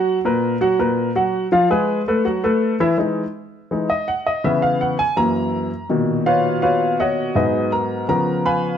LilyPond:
<<
  \new Staff \with { instrumentName = "Upright piano" } { \time 4/4 \key ces \lydian \tempo 4 = 164 <ges ges' ges''>8 <bes, bes' b'>4 <fis fis' fis''>8 <bes, bes' b'>4 <fis fis' fis''>4 | <f f' f''>8 <aes aes' ces''>4 <a a' ces''>8 <fis fis' fis''>8 <a a' b'>4 <fes fes' fes''>8 | r2 r8 dis''8 ges''8 dis''8 | fes''8 f''8 ges''8 aes''8 bes''2 |
r4 <eis' b' cis'' eis''>4 <eis' b' cis'' eis''>4 <fis' cis'' dis'' fis''>4 | <ees' aes' ces'' ees''>4 <bes' bes''>4 <bes' bes''>4 <ces'' f'' aes'' ces'''>4 | }
  \new Staff \with { instrumentName = "Upright piano" } { \clef bass \time 4/4 \key ces \lydian r1 | r1 | <e gis dis'>8 r4. <e gis dis'>8 r4. | <des fes ces'>4. r8 <ges, fes bes>4. r8 |
<ais, b, dis>1 | <aes, ges ces'>2 <des f ces'>2 | }
>>